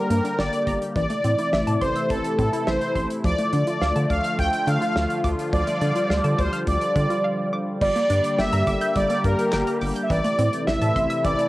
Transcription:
Already playing: D3 G3 A#3 G4
0.10 G2 A#3 A#4, closed hi-hat
0.24 D4, closed hi-hat
0.39 G1 D5, snare
0.53 closed hi-hat
0.67 G1 A#5, kick, closed hi-hat
0.82 closed hi-hat
0.96 A1 C3 E3 A3 E4 D5, kick, closed hi-hat
1.10 A3, closed hi-hat
1.24 A2 C4, closed hi-hat
1.39 E4, closed hi-hat
1.53 A1 E5, snare
1.67 A2 A5, closed hi-hat
1.81 A1 C5 C6, kick, closed hi-hat
1.96 E6, closed hi-hat
2.10 A1 A4, kick, closed hi-hat
2.24 closed hi-hat
2.39 A2 C4 A4, kick, closed hi-hat
2.53 E4, closed hi-hat
2.67 A1 C5 E5, snare
2.81 closed hi-hat
2.95 A1 C6, kick, closed hi-hat
3.10 closed hi-hat
3.24 D2 D3 F3 A3 F4 D5, kick, closed hi-hat
3.38 A3, closed hi-hat
3.53 D3 D4 D5, closed hi-hat
3.67 F4, closed hi-hat
3.81 D2 F5, snare
3.96 D3 A5, closed hi-hat
4.10 D2 F5 D6, kick, closed hi-hat
4.24 F6, closed hi-hat
4.39 D2 G5, kick, closed hi-hat
4.53 closed hi-hat
4.67 D3 D4 F5, closed hi-hat
4.81 F4, closed hi-hat
4.96 D2 F5, snare
5.10 closed hi-hat
5.24 D2 D6, kick, closed hi-hat
5.39 closed hi-hat
5.53 D2 F3 G3 D5, kick, closed hi-hat
5.67 A3, closed hi-hat
5.81 D3 D4, closed hi-hat
5.96 F4, closed hi-hat
6.10 D2 F5, snare
6.24 D3 A5, closed hi-hat
6.38 D2 C5 D6, kick, closed hi-hat
6.53 C5 F6, closed hi-hat
6.67 D2 D5, kick, closed hi-hat
6.81 closed hi-hat
6.96 D3 D4, kick, closed hi-hat
7.10 F4, closed hi-hat
7.24 F5
7.53 D6
7.81 G1 D3 G3 A#3 G4 D5, kick, crash
7.96 A#3, closed hi-hat
8.10 G2 D4, closed hi-hat
8.24 closed hi-hat
8.39 G1 E5 G5, snare
8.53 G2 A#5, closed hi-hat
8.67 G1 D6, kick, closed hi-hat
8.81 G6, closed hi-hat
8.96 G1 G3 D5, kick, closed hi-hat
9.10 A#3, closed hi-hat
9.24 G2 A#4, kick, closed hi-hat
9.39 closed hi-hat
9.53 G1 G5, snare, clap
9.67 A#5, closed hi-hat
9.81 G1 D6, open hi-hat
9.96 G6, closed hi-hat
10.03 E5
10.10 A1 C3 E3 A3 E4 D5, kick, closed hi-hat
10.24 A3, closed hi-hat
10.39 A2 C4, closed hi-hat
10.53 closed hi-hat
10.67 A1 E5, snare
10.81 A2 A5, closed hi-hat
10.96 A1 C6, kick, closed hi-hat
11.10 E6, closed hi-hat
11.24 A1 E3 D5, kick, closed hi-hat
11.39 A3, closed hi-hat

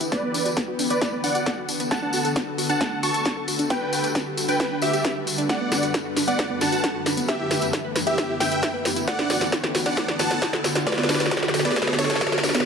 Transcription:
0.01 E4, closed hi-hat, tambourine
0.12 A3 B4 D5, kick, snare, closed hi-hat, tambourine
0.23 B3
0.34 D4, open hi-hat, tambourine
0.46 F#4, closed hi-hat, tambourine
0.56 A4, kick, snare, closed hi-hat, tambourine
0.68 F#4
0.79 D4, open hi-hat, tambourine
0.90 B3 B4 D5, closed hi-hat, tambourine
1.01 A3, kick, snare, closed hi-hat, tambourine
1.13 B3
1.24 D4 D5 F#5, open hi-hat, tambourine
1.35 F#4, closed hi-hat, tambourine
1.46 A4, kick, snare, closed hi-hat, tambourine
1.58 F#4
1.69 D4, open hi-hat, tambourine
1.80 B3, closed hi-hat, tambourine
1.91 A3 F#5 A5, kick, snare, closed hi-hat, tambourine
2.02 D4
2.13 F#4, open hi-hat, tambourine
2.25 A4, closed hi-hat, tambourine
2.36 D5, kick, snare, closed hi-hat, tambourine
2.47 A4
2.58 F#4, open hi-hat, tambourine
2.69 D4 F#5 A5, closed hi-hat, tambourine
2.81 A3, kick, snare, closed hi-hat
2.92 D4
3.03 F#4 A5 C#6, open hi-hat, tambourine
3.14 A4, closed hi-hat, tambourine
3.25 D5, kick, snare, closed hi-hat, tambourine
3.37 A4
3.48 F#4, open hi-hat, tambourine
3.59 D4, closed hi-hat, tambourine
3.70 B3 B4 G5, kick, snare, closed hi-hat, tambourine
3.82 D4
3.93 F#4, open hi-hat, tambourine
4.04 G4, closed hi-hat, tambourine
4.15 B4, kick, snare, closed hi-hat, tambourine
4.26 G4
4.37 F#4, open hi-hat, tambourine
4.48 D4 B4 G5, closed hi-hat, tambourine
4.60 B3, kick, snare, closed hi-hat, tambourine
4.71 D4
4.82 F#4 G4 E5, open hi-hat, tambourine
4.93 G4, closed hi-hat, tambourine
5.04 B4, kick, snare, closed hi-hat, tambourine
5.16 G4
5.27 F#4, open hi-hat, tambourine
5.38 D4, closed hi-hat, tambourine
5.49 A3 D5 F#5, kick, snare, closed hi-hat, tambourine, riser
5.61 B3
5.72 D4, snare, open hi-hat, tambourine
5.82 F#4, closed hi-hat, tambourine
5.94 A4, kick, snare, closed hi-hat, tambourine
6.05 F#4
6.16 D4, snare, open hi-hat, tambourine
6.28 B3 D5 F#5, closed hi-hat
6.39 A3, kick, snare, closed hi-hat, tambourine
6.50 B3
6.61 D4 F#5 A5, snare, open hi-hat, tambourine
6.72 F#4, closed hi-hat, tambourine
6.84 A4, kick, snare, closed hi-hat
6.95 F#4
7.06 D4, snare, open hi-hat, tambourine
7.17 B3, closed hi-hat, tambourine
7.28 B3 G4 E5, kick, snare, closed hi-hat, tambourine
7.40 E4
7.51 G4, snare, open hi-hat, tambourine
7.61 B4, closed hi-hat, tambourine
7.73 E5, kick, snare, closed hi-hat, tambourine
7.85 B4
7.96 B4, snare, open hi-hat, tambourine
8.07 E4 G4 E5, closed hi-hat, tambourine
8.18 B3, kick, snare, closed hi-hat, tambourine
8.29 E4
8.40 G4 E5 G5, snare, open hi-hat, tambourine
8.51 B4, closed hi-hat, tambourine
8.62 E5, kick, snare, closed hi-hat, tambourine
8.74 B4
8.85 G4, snare, open hi-hat, tambourine
8.96 E4, closed hi-hat, tambourine
9.07 A3 D5 F#5, kick, snare, closed hi-hat
9.19 D4, snare
9.30 F#4, snare, open hi-hat, tambourine
9.41 A4, snare, closed hi-hat, tambourine
9.52 D5, kick, snare, closed hi-hat, tambourine
9.63 A4, snare
9.75 F#4, snare, open hi-hat, tambourine
9.86 D4 D5 F#5, snare, closed hi-hat, tambourine
9.97 A3, kick, snare, closed hi-hat, tambourine
10.08 D4, snare
10.19 F#4 F#5 A5, snare, open hi-hat, tambourine
10.31 A4, snare, closed hi-hat, tambourine
10.42 D5, kick, snare, closed hi-hat, tambourine
10.53 A4, snare
10.64 F#4, snare, open hi-hat, tambourine
10.75 D4, snare, closed hi-hat, tambourine
10.87 A3 B4 D5, kick, snare, closed hi-hat, tambourine
10.92 snare
10.98 B3, snare
11.03 snare
11.09 D4, snare, open hi-hat, tambourine
11.15 snare
11.20 F#4, snare, closed hi-hat, tambourine
11.26 snare
11.31 A4, kick, snare, closed hi-hat, tambourine
11.37 snare
11.43 F#4, snare
11.48 snare
11.54 F#4, snare, open hi-hat, tambourine
11.59 snare
11.65 B3 B4 D5, snare, closed hi-hat, tambourine
11.71 snare
11.76 A3, kick, snare, closed hi-hat, tambourine
11.82 snare
11.87 B3, snare
11.93 snare
11.99 D4 A4 C#5, snare, open hi-hat, tambourine
12.04 snare
12.10 F#4, snare, closed hi-hat, tambourine
12.15 snare
12.21 A4, kick, snare, closed hi-hat, tambourine
12.27 snare
12.32 F#4, snare
12.38 snare
12.43 D4, snare, open hi-hat, tambourine
12.49 snare
12.54 B3, snare, closed hi-hat, tambourine
12.60 snare

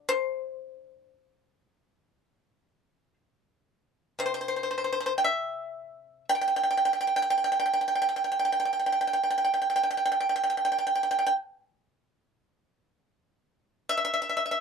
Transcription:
Already playing: D3
0.09 C5
4.19 C3 C5
4.26 C5
4.34 C5
4.41 C5
4.48 C5
4.56 C5
4.63 C5
4.71 C5
4.78 C5
4.84 C5
4.92 C5
5.00 C5
5.06 C5
5.18 G5
5.24 E5
6.29 G5
6.35 G5
6.41 G5
6.48 G5
6.56 G5
6.63 G5
6.71 G5
6.77 G5
6.85 G5
6.93 G5
7.01 G5
7.07 G5
7.16 G5
7.22 G5
7.30 G5
7.38 G5
7.44 G5
7.52 G5
7.60 G5
7.66 G5
7.73 G5
7.81 G5
7.88 G5
7.95 G5
8.02 G5
8.09 G5
8.16 G5
8.24 G5
8.32 G5
8.39 G5
8.45 G5
8.52 G5
8.60 G5
8.65 G5
8.73 G5
8.79 G5
8.86 G5
8.92 G5
9.01 G5
9.07 G5
9.13 G5
9.23 G5
9.30 G5
9.38 G5
9.44 G5
9.54 G5
9.62 G5
9.70 G5
9.76 G5
9.83 G5
9.91 G5
9.97 G5
10.05 G5
10.12 G5
10.20 G5
10.29 G5
10.36 G5
10.44 G5
10.50 G5
10.57 G5
10.65 G5
10.72 G5
10.78 G5
10.87 G5
10.95 G5
11.03 G5
11.11 G5
11.19 G5
11.26 G5
13.89 E5
13.97 E5
14.05 E5
14.14 E5
14.22 E5
14.29 E5
14.37 E5
14.46 E5
14.51 E5

